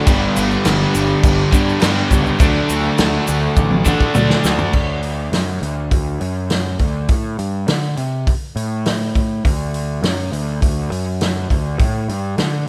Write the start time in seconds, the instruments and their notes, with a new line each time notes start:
Already playing: overdriven electric guitar D4
0.07 picked electric bass G1, steel-string acoustic guitar G2 D3 G3 B3 D4 G4, tonewheel organ G4 B4 D5, kick, crash, shaker
0.36 picked electric bass G1, crash, shaker
0.51 shaker
0.64 picked electric bass G1, steel-string acoustic guitar G3 B3 D4 G4, snare, crash, shaker
0.95 picked electric bass G1, crash, shaker
1.23 picked electric bass G1, kick, crash, shaker
1.51 overdriven electric guitar G2 D3, picked electric bass G2, steel-string acoustic guitar G3 B3 D4 G4, kick, crash, shaker
1.69 shaker
1.80 overdriven electric guitar G2 D3, picked electric bass G2, steel-string acoustic guitar G3 B3 D4 G4, snare, crash, shaker
2.10 picked electric bass C#2, steel-string acoustic guitar G3 B3 D4 G4, kick, crash, shaker
2.26 shaker
2.39 picked electric bass D2, steel-string acoustic guitar D3 F#3 A3 D4 F#4, tonewheel organ F#4 A4 D5, kick, crash, shaker
2.69 picked electric bass D2, crash, shaker
2.98 picked electric bass D2, steel-string acoustic guitar F#3 A3 D4 F#4, snare, crash, shaker
3.27 picked electric bass D2, crash, shaker
3.57 picked electric bass A1, kick, shaker
3.71 high tom
3.85 overdriven electric guitar D3, steel-string acoustic guitar A3 D4 F#4, kick, shaker
4.00 kick, shaker
4.14 picked electric bass D2, overdriven electric guitar D3, steel-string acoustic guitar F#3 A3, mid tom, shaker
4.18 steel-string acoustic guitar D4 F#4
4.30 snare
4.44 picked electric bass D2, steel-string acoustic guitar A3 D4 F#4, snare, shaker
4.58 floor tom, shaker
4.73 picked electric bass D2, kick, crash
5.03 open hi-hat
5.32 picked electric bass F#2, snare, open hi-hat
5.62 picked electric bass D2, open hi-hat
5.91 picked electric bass D2, kick, open hi-hat
6.21 picked electric bass F#2, open hi-hat
6.50 snare, open hi-hat
6.79 picked electric bass D2, kick, open hi-hat
7.08 picked electric bass A2, kick, open hi-hat
7.39 picked electric bass G2, open hi-hat
7.68 picked electric bass D3, snare, open hi-hat
7.97 picked electric bass C3, open hi-hat
8.27 muted picked electric bass stroke, kick, open hi-hat
8.56 picked electric bass A2, open hi-hat
8.86 snare, open hi-hat
9.15 kick, open hi-hat
9.45 picked electric bass D2, kick, open hi-hat
9.74 open hi-hat
10.03 picked electric bass F#2, snare, open hi-hat
10.32 picked electric bass D2, open hi-hat
10.62 picked electric bass D2, kick, open hi-hat
10.91 picked electric bass F#2, open hi-hat
11.21 snare, open hi-hat
11.50 picked electric bass D2, kick, open hi-hat
11.79 picked electric bass A2, kick, open hi-hat
12.09 picked electric bass G2, open hi-hat
12.38 picked electric bass D3, snare, open hi-hat